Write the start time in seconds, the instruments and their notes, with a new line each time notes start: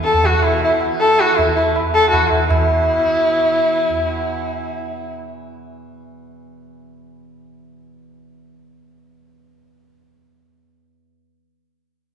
Already playing: tanpura E2 B2 E3
0.04 sarangi A4, tabla te
0.14 tabla ge
0.24 sarangi F#4, tabla tin, tabla ge
0.40 tanpura B2, tabla na
0.45 sarangi E4
0.62 sarangi E4, tabla tin
0.81 tabla na
0.85 tanpura E3
1.00 sarangi A4, tabla tin
1.19 sarangi F#4, tabla na
1.32 tanpura E3
1.38 sarangi E4, tabla na, tabla ge
1.56 sarangi E4
1.76 tabla na
1.80 tanpura E2
1.94 sarangi A4
2.11 sarangi F#4, tabla na, tabla ge
2.28 tanpura B2, sarangi E4
2.32 tabla ge
2.48 tanpura B2, sarangi E4, tabla na, tabla ge
2.98 tanpura E3
3.43 tanpura E3
3.89 tanpura E2